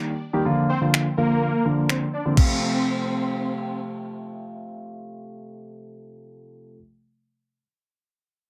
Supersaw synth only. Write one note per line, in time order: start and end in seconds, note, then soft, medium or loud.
0.69 0.79 C4 medium
0.69 0.78 C5 medium
1.17 1.63 A#3 medium
1.17 1.62 A#4 medium
1.90 1.99 C4 medium
1.90 1.98 C5 medium
2.13 2.23 D4 medium
2.13 2.22 D5 medium
2.37 3.77 C4 medium